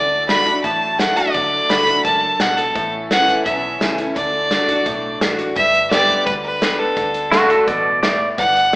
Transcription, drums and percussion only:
0.29 snare, closed hi-hat
0.46 kick, closed hi-hat
0.64 kick, closed hi-hat
0.99 snare, closed hi-hat
1.17 closed hi-hat
1.34 kick, closed hi-hat
1.70 snare, closed hi-hat
1.87 kick, closed hi-hat
2.05 kick, closed hi-hat
2.40 snare, closed hi-hat
2.58 closed hi-hat
2.76 kick, closed hi-hat
3.11 snare, closed hi-hat
3.28 kick, closed hi-hat
3.46 kick, closed hi-hat
3.81 snare, closed hi-hat
3.98 closed hi-hat
4.16 kick, closed hi-hat
4.51 snare, closed hi-hat
4.69 kick, closed hi-hat
4.86 kick, closed hi-hat
5.21 snare, closed hi-hat
5.39 closed hi-hat
5.56 kick, closed hi-hat
5.74 closed hi-hat
5.91 snare, closed hi-hat
6.09 kick, closed hi-hat
6.27 kick, closed hi-hat
6.62 snare, closed hi-hat
6.96 kick, closed hi-hat
7.14 closed hi-hat
7.32 snare, closed hi-hat
7.50 kick, closed hi-hat
7.68 kick, closed hi-hat
8.03 snare, closed hi-hat
8.38 kick, closed hi-hat
8.56 closed hi-hat

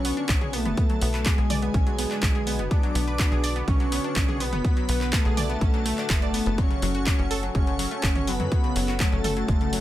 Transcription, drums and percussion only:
0.05 open hi-hat
0.17 closed hi-hat
0.29 kick, clap, closed hi-hat
0.41 closed hi-hat, mid tom
0.53 open hi-hat
0.65 closed hi-hat, mid tom
0.77 kick, closed hi-hat
0.90 closed hi-hat
1.01 open hi-hat
1.14 clap, closed hi-hat
1.26 kick, clap, closed hi-hat
1.38 closed hi-hat
1.50 open hi-hat, mid tom
1.62 closed hi-hat
1.74 kick, closed hi-hat
1.87 closed hi-hat
1.99 open hi-hat
2.11 clap, closed hi-hat
2.23 kick, clap, closed hi-hat
2.35 closed hi-hat
2.47 open hi-hat
2.59 closed hi-hat
2.71 kick, closed hi-hat
2.83 closed hi-hat
2.95 open hi-hat
3.08 closed hi-hat
3.19 kick, clap, closed hi-hat
3.32 closed hi-hat
3.44 open hi-hat
3.56 closed hi-hat
3.68 kick, closed hi-hat, mid tom
3.80 closed hi-hat
3.92 open hi-hat
4.04 closed hi-hat
4.16 kick, clap, closed hi-hat
4.29 closed hi-hat, mid tom
4.40 open hi-hat
4.53 closed hi-hat, mid tom
4.65 kick, closed hi-hat
4.77 closed hi-hat
4.89 open hi-hat
5.01 clap, closed hi-hat
5.13 kick, clap, closed hi-hat
5.25 closed hi-hat
5.37 open hi-hat, mid tom
5.50 closed hi-hat
5.61 kick, closed hi-hat
5.74 closed hi-hat
5.86 open hi-hat
5.98 clap, closed hi-hat
6.10 kick, clap, closed hi-hat
6.22 closed hi-hat
6.34 open hi-hat
6.46 closed hi-hat
6.58 kick, closed hi-hat
6.71 closed hi-hat
6.82 open hi-hat
6.95 closed hi-hat
7.07 kick, clap, closed hi-hat
7.19 closed hi-hat
7.31 open hi-hat
7.43 closed hi-hat
7.55 kick, closed hi-hat, mid tom
7.67 closed hi-hat
7.79 open hi-hat
7.91 closed hi-hat
8.03 kick, clap, closed hi-hat
8.16 closed hi-hat, mid tom
8.27 open hi-hat
8.40 closed hi-hat, mid tom
8.52 kick, closed hi-hat
8.64 closed hi-hat
8.76 open hi-hat
8.88 clap, closed hi-hat
9.00 kick, clap, closed hi-hat
9.12 closed hi-hat
9.24 open hi-hat, mid tom
9.37 closed hi-hat
9.48 kick, closed hi-hat
9.61 closed hi-hat
9.73 open hi-hat

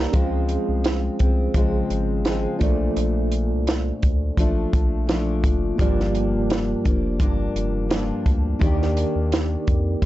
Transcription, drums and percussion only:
0.13 kick, closed hi-hat
0.49 closed hi-hat
0.84 snare, closed hi-hat
1.19 kick, closed hi-hat
1.54 kick, closed hi-hat
1.90 closed hi-hat
2.25 snare, closed hi-hat
2.61 kick, closed hi-hat
2.96 closed hi-hat
3.32 closed hi-hat
3.67 snare, closed hi-hat
4.03 kick, closed hi-hat
4.37 kick, closed hi-hat
4.73 kick, closed hi-hat
5.09 snare, closed hi-hat
5.44 kick, closed hi-hat
5.79 kick, closed hi-hat
6.00 snare
6.15 closed hi-hat
6.50 snare, closed hi-hat
6.85 kick, closed hi-hat
7.20 kick, closed hi-hat
7.56 closed hi-hat
7.91 snare, closed hi-hat
8.26 kick, closed hi-hat
8.61 kick, closed hi-hat
8.82 snare
8.97 closed hi-hat
9.32 snare, closed hi-hat
9.67 kick, closed hi-hat
10.02 kick, closed hi-hat

